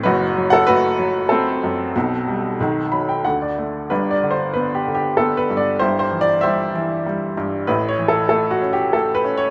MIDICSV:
0, 0, Header, 1, 2, 480
1, 0, Start_track
1, 0, Tempo, 634249
1, 39, Time_signature, 3, 2, 24, 8
1, 1959, Tempo, 648649
1, 3879, Tempo, 626305
1, 7190, End_track
2, 0, Start_track
2, 0, Title_t, "Upright piano"
2, 0, Program_c, 0, 0
2, 0, Control_c, 0, 64, 127
2, 26, Note_on_c, 0, 71, 85
2, 41, Note_on_c, 0, 42, 70
2, 42, Note_on_c, 0, 30, 67
2, 42, Note_on_c, 0, 66, 74
2, 48, Control_c, 0, 64, 0
2, 162, Control_c, 0, 64, 127
2, 281, Note_on_c, 0, 54, 53
2, 369, Note_off_c, 0, 66, 0
2, 380, Note_on_c, 0, 78, 89
2, 397, Note_off_c, 0, 71, 0
2, 399, Note_on_c, 0, 69, 78
2, 504, Note_on_c, 0, 71, 97
2, 506, Note_off_c, 0, 69, 0
2, 508, Note_off_c, 0, 78, 0
2, 518, Note_on_c, 0, 57, 62
2, 519, Note_on_c, 0, 66, 77
2, 735, Note_off_c, 0, 54, 0
2, 746, Note_on_c, 0, 54, 59
2, 956, Note_off_c, 0, 71, 0
2, 963, Note_off_c, 0, 66, 0
2, 976, Note_on_c, 0, 69, 76
2, 979, Note_off_c, 0, 57, 0
2, 990, Note_on_c, 0, 57, 49
2, 996, Note_on_c, 0, 60, 64
2, 1227, Note_off_c, 0, 42, 0
2, 1238, Note_on_c, 0, 42, 54
2, 1445, Note_off_c, 0, 30, 0
2, 1451, Note_off_c, 0, 54, 0
2, 1460, Note_off_c, 0, 57, 0
2, 1470, Note_off_c, 0, 42, 0
2, 1481, Note_on_c, 0, 47, 70
2, 1482, Note_on_c, 0, 35, 59
2, 1486, Control_c, 0, 64, 0
2, 1600, Control_c, 0, 64, 127
2, 1723, Note_on_c, 0, 55, 49
2, 1933, Note_off_c, 0, 35, 0
2, 1948, Note_off_c, 0, 47, 0
2, 1956, Note_off_c, 0, 55, 0
2, 1968, Control_c, 0, 64, 0
2, 1969, Note_on_c, 0, 35, 56
2, 1971, Note_on_c, 0, 51, 65
2, 2097, Control_c, 0, 64, 127
2, 2203, Note_on_c, 0, 83, 57
2, 2207, Note_on_c, 0, 54, 44
2, 2315, Note_off_c, 0, 83, 0
2, 2328, Note_on_c, 0, 79, 53
2, 2411, Note_off_c, 0, 69, 0
2, 2420, Note_off_c, 0, 60, 0
2, 2422, Note_off_c, 0, 35, 0
2, 2438, Note_off_c, 0, 51, 0
2, 2441, Note_off_c, 0, 79, 0
2, 2443, Note_off_c, 0, 54, 0
2, 2445, Note_on_c, 0, 78, 52
2, 2447, Note_on_c, 0, 38, 46
2, 2447, Note_on_c, 0, 50, 48
2, 2456, Control_c, 0, 64, 0
2, 2561, Note_off_c, 0, 78, 0
2, 2574, Note_on_c, 0, 74, 49
2, 2599, Control_c, 0, 64, 127
2, 2693, Note_on_c, 0, 57, 47
2, 2904, Note_off_c, 0, 38, 0
2, 2910, Note_off_c, 0, 74, 0
2, 2919, Note_off_c, 0, 50, 0
2, 2926, Note_off_c, 0, 57, 0
2, 2929, Note_on_c, 0, 71, 67
2, 2937, Note_on_c, 0, 31, 50
2, 2938, Note_on_c, 0, 43, 54
2, 2943, Control_c, 0, 64, 0
2, 2944, Note_on_c, 0, 62, 49
2, 3080, Control_c, 0, 64, 127
2, 3083, Note_on_c, 0, 74, 63
2, 3095, Note_off_c, 0, 71, 0
2, 3176, Note_on_c, 0, 50, 41
2, 3230, Note_on_c, 0, 72, 66
2, 3235, Note_off_c, 0, 74, 0
2, 3400, Note_on_c, 0, 71, 69
2, 3403, Note_off_c, 0, 72, 0
2, 3415, Note_on_c, 0, 59, 45
2, 3555, Note_on_c, 0, 67, 62
2, 3566, Note_off_c, 0, 71, 0
2, 3620, Note_off_c, 0, 62, 0
2, 3641, Note_off_c, 0, 50, 0
2, 3652, Note_on_c, 0, 50, 44
2, 3692, Note_off_c, 0, 67, 0
2, 3703, Note_on_c, 0, 67, 66
2, 3869, Note_on_c, 0, 69, 68
2, 3873, Note_off_c, 0, 59, 0
2, 3874, Note_off_c, 0, 67, 0
2, 3885, Note_on_c, 0, 59, 42
2, 4024, Note_on_c, 0, 71, 70
2, 4040, Note_off_c, 0, 69, 0
2, 4111, Note_off_c, 0, 43, 0
2, 4123, Note_on_c, 0, 43, 49
2, 4175, Note_on_c, 0, 74, 69
2, 4197, Note_off_c, 0, 71, 0
2, 4331, Note_off_c, 0, 31, 0
2, 4342, Note_off_c, 0, 50, 0
2, 4348, Note_on_c, 0, 72, 80
2, 4349, Note_off_c, 0, 59, 0
2, 4350, Note_off_c, 0, 43, 0
2, 4353, Note_off_c, 0, 74, 0
2, 4359, Note_on_c, 0, 67, 57
2, 4361, Note_on_c, 0, 43, 54
2, 4362, Note_on_c, 0, 31, 50
2, 4364, Note_on_c, 0, 64, 54
2, 4369, Control_c, 0, 64, 0
2, 4487, Note_off_c, 0, 72, 0
2, 4499, Note_on_c, 0, 72, 74
2, 4517, Control_c, 0, 64, 127
2, 4595, Note_on_c, 0, 52, 39
2, 4658, Note_off_c, 0, 72, 0
2, 4667, Note_on_c, 0, 74, 86
2, 4819, Note_on_c, 0, 76, 82
2, 4826, Note_off_c, 0, 67, 0
2, 4835, Note_on_c, 0, 72, 63
2, 4837, Note_on_c, 0, 67, 52
2, 4839, Note_off_c, 0, 74, 0
2, 4845, Note_on_c, 0, 55, 52
2, 5054, Note_off_c, 0, 64, 0
2, 5067, Note_off_c, 0, 52, 0
2, 5079, Note_on_c, 0, 52, 49
2, 5308, Note_off_c, 0, 55, 0
2, 5320, Note_on_c, 0, 55, 46
2, 5521, Note_off_c, 0, 76, 0
2, 5529, Note_off_c, 0, 72, 0
2, 5530, Note_off_c, 0, 67, 0
2, 5547, Note_off_c, 0, 43, 0
2, 5559, Note_on_c, 0, 43, 54
2, 5771, Note_off_c, 0, 31, 0
2, 5777, Note_off_c, 0, 52, 0
2, 5784, Note_off_c, 0, 55, 0
2, 5788, Note_on_c, 0, 71, 74
2, 5791, Note_off_c, 0, 43, 0
2, 5792, Note_on_c, 0, 45, 61
2, 5794, Note_on_c, 0, 33, 62
2, 5802, Note_on_c, 0, 64, 57
2, 5808, Control_c, 0, 64, 0
2, 5950, Note_on_c, 0, 73, 73
2, 5957, Note_off_c, 0, 71, 0
2, 5963, Control_c, 0, 64, 127
2, 6027, Note_on_c, 0, 52, 40
2, 6102, Note_on_c, 0, 69, 72
2, 6117, Note_off_c, 0, 73, 0
2, 6248, Note_off_c, 0, 69, 0
2, 6260, Note_on_c, 0, 69, 70
2, 6269, Note_on_c, 0, 57, 54
2, 6414, Note_off_c, 0, 69, 0
2, 6426, Note_on_c, 0, 66, 70
2, 6483, Note_off_c, 0, 64, 0
2, 6508, Note_on_c, 0, 61, 49
2, 6594, Note_off_c, 0, 66, 0
2, 6597, Note_on_c, 0, 67, 74
2, 6745, Note_off_c, 0, 57, 0
2, 6751, Note_on_c, 0, 69, 69
2, 6757, Note_on_c, 0, 57, 50
2, 6761, Note_off_c, 0, 67, 0
2, 6903, Note_off_c, 0, 69, 0
2, 6916, Note_on_c, 0, 71, 75
2, 6964, Note_off_c, 0, 52, 0
2, 6978, Note_off_c, 0, 61, 0
2, 6989, Note_on_c, 0, 61, 55
2, 7084, Note_off_c, 0, 71, 0
2, 7091, Note_on_c, 0, 73, 78
2, 7190, Note_off_c, 0, 33, 0
2, 7190, Note_off_c, 0, 45, 0
2, 7190, Note_off_c, 0, 57, 0
2, 7190, Note_off_c, 0, 61, 0
2, 7190, Note_off_c, 0, 73, 0
2, 7190, End_track
0, 0, End_of_file